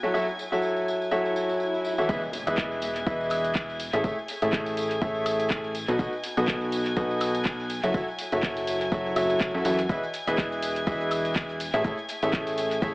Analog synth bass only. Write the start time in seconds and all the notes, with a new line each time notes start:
2.09 E1
2.47 E1
3.07 E1
3.93 A1
4.04 A1
4.42 A1
5.02 A1
5.88 B1
5.99 B1
6.37 B1
6.97 B1
7.83 F#1
7.94 F#1
8.32 F#1
8.92 F#1
9.16 F#1
9.54 F#2
9.65 F#2
9.89 E1
10.27 E1
10.87 E1
11.74 A1
11.84 A1
12.23 A1
12.82 A1